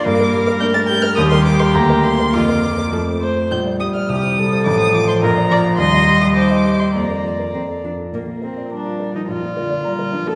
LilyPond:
<<
  \new Staff \with { instrumentName = "Violin" } { \time 2/4 \key bes \major \tempo 4 = 104 d'''8. d'''16 g'''16 a'''16 g'''16 f'''16 | ees'''16 c'''16 d'''16 c'''16 bes''8 c'''8 | d'''4. r8 | g'''8 ees'''16 f'''16 ees'''4 |
d'''16 ees'''16 d'''16 c'''16 bes''4 | c'''8. ees'''16 d'''8. c'''16 | bes''4 r4 | bes'2 |
d''2 | }
  \new Staff \with { instrumentName = "Viola" } { \time 2/4 \key bes \major bes'2 | g'2 | f'4 a'8 c''8 | r4 g'8 a'8~ |
a'4 bes'8 d''8 | ees''4 c''4 | d''4. r8 | bes8 c'8 d'8. ees'16 |
f'4.~ f'16 a'16 | }
  \new Staff \with { instrumentName = "Grand piano" } { \time 2/4 \key bes \major g,16 bes'16 g16 bes'16 d'16 bes'16 g'16 bes'16 | ees,16 bes'16 bes16 bes'16 d,16 bes'16 bes16 bes'16 | f,16 bes'16 bes16 bes'16 f,16 c''16 a16 c''16 | bes,,16 d''16 g16 d''16 c,16 c''16 g16 c''16 |
a,,16 c''16 f16 c''16 bes,,16 d''16 f16 d''16 | ees,16 ees''16 g16 ees''16 ees'16 ees''16 g'16 ees''16 | f,16 bes'16 f16 bes'16 f,16 a'16 f16 a'16 | bes,,16 f16 bes'16 d''16 bes''16 f'16 bes'16 f16 |
bes,,16 bes16 bes'16 d''16 bes''16 bes'16 d'16 bes16 | }
  \new Staff \with { instrumentName = "Cello" } { \clef bass \time 2/4 \key bes \major bes4 a4 | g4 bes4 | bes4 a8 r8 | g4 g4 |
f4 f4 | g2 | bes4 c'8 d'8 | bes4 g4 |
f8 d8 g8 f8 | }
>>